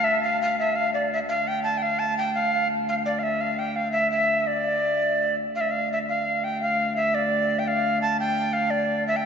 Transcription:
0.00 1.29 D2 medium
0.00 0.22 E5 medium
0.23 0.39 F5 medium
0.42 0.57 F5 medium
0.59 0.77 E5 medium
0.76 0.93 F5 medium
0.94 1.10 D5 medium
1.13 1.19 E5 medium
1.29 5.54 D2 medium
1.29 1.49 F5 medium
1.48 1.62 G5 medium
1.63 1.79 A5 medium
1.78 1.84 G5 medium
1.82 2.01 F5 medium
1.99 2.17 A5 medium
2.18 2.34 G5 medium
2.35 2.68 F5 medium
2.89 2.95 F5 medium
3.06 3.20 D5 medium
3.19 3.25 F5 medium
3.23 3.42 E5 medium
3.41 3.60 F5 medium
3.59 3.77 G5 medium
3.76 3.92 F5 medium
3.92 4.09 E5 medium
4.11 4.40 E5 medium
4.40 4.49 E5 medium
4.47 5.36 D5 medium
5.55 9.26 D2 medium
5.55 5.62 F5 medium
5.61 5.73 E5 medium
5.71 5.91 F5 medium
5.93 5.99 E5 medium
6.09 6.46 F5 medium
6.44 6.60 G5 medium
6.62 6.94 F5 medium
6.96 7.16 E5 medium
7.14 7.60 D5 medium
7.59 7.69 G5 medium
7.68 8.01 F5 medium
8.02 8.17 A5 medium
8.20 8.55 G5 medium
8.53 8.72 F5 medium
8.70 9.06 D5 medium
9.08 9.18 E5 medium
9.16 9.26 G5 medium

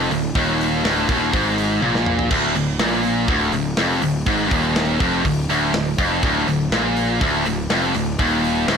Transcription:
0.00 0.10 F2 loud
0.10 0.33 D1 medium
0.10 0.31 D2 medium
0.10 open hi-hat medium
0.35 0.81 D#1 medium
0.35 0.84 D#2 loud
0.35 kick loud
0.35 open hi-hat medium
0.61 open hi-hat medium
0.83 1.06 D1 medium
0.83 1.08 D2 loud
0.83 snare loud
0.83 open hi-hat medium
1.09 1.32 D#1 medium
1.09 1.32 D#2 loud
1.09 kick loud
1.09 open hi-hat medium
1.33 1.79 G#1 loud
1.33 1.81 G#2 loud
1.33 kick loud
1.33 open hi-hat medium
1.58 open hi-hat medium
1.81 2.27 A#1 medium
1.81 2.30 A#2 loud
1.81 high tom medium
1.95 snare medium
2.06 mid tom medium
2.19 floor tom medium
2.30 2.53 D1 medium
2.30 2.55 D2 loud
2.30 kick loud
2.30 crash loud
2.55 2.78 D1 medium
2.55 2.75 D2 medium
2.55 open hi-hat medium
2.79 3.25 A#1 medium
2.79 3.28 A#2 loud
2.79 snare loud
2.79 open hi-hat medium
2.92 snare soft
3.03 open hi-hat medium
3.28 3.51 D1 medium
3.28 3.53 D2 loud
3.28 kick loud
3.28 open hi-hat medium
3.52 3.76 D1 medium
3.52 3.73 D2 medium
3.52 open hi-hat medium
3.77 4.00 F1 medium
3.77 4.02 F2 loud
3.77 snare loud
3.77 open hi-hat medium
4.02 4.25 D1 medium
4.02 4.22 D2 medium
4.02 open hi-hat medium
4.26 4.49 G#1 medium
4.26 4.51 G#2 loud
4.26 kick loud
4.26 open hi-hat medium
4.51 4.97 D#1 medium
4.51 5.00 D#2 loud
4.51 kick loud
4.51 open hi-hat medium
4.76 snare loud
4.76 open hi-hat medium
5.00 5.23 F1 loud
5.00 5.24 F2 loud
5.00 kick loud
5.00 open hi-hat medium
5.24 5.47 D1 medium
5.24 5.44 D2 medium
5.24 kick medium
5.24 open hi-hat medium
5.49 5.72 D1 loud
5.49 5.73 D2 loud
5.49 open hi-hat medium
5.73 5.96 D1 medium
5.73 5.94 D2 medium
5.73 snare loud
5.73 open hi-hat medium
5.98 6.21 F1 medium
5.98 6.22 F2 loud
5.98 kick loud
5.98 open hi-hat medium
6.23 6.46 D1 loud
6.23 6.47 D2 loud
6.23 kick loud
6.23 open hi-hat medium
6.47 6.70 D1 medium
6.47 6.68 D2 medium
6.47 open hi-hat medium
6.71 7.17 A#1 medium
6.71 7.21 A#2 loud
6.71 snare loud
6.71 open hi-hat medium
6.96 open hi-hat medium
7.21 7.44 D1 medium
7.21 7.45 D2 loud
7.21 kick loud
7.21 open hi-hat medium
7.45 7.68 D1 medium
7.45 7.65 D2 medium
7.45 open hi-hat medium
7.70 7.93 F1 loud
7.70 7.94 F2 loud
7.70 snare loud
7.70 open hi-hat medium
7.94 8.17 D1 medium
7.94 8.14 D2 medium
7.94 open hi-hat medium
8.19 8.64 D#1 medium
8.19 8.67 D#2 loud
8.19 kick loud
8.19 open hi-hat medium
8.44 open hi-hat medium
8.68 8.77 D1 loud
8.68 8.77 D2 loud
8.68 snare loud
8.68 open hi-hat medium

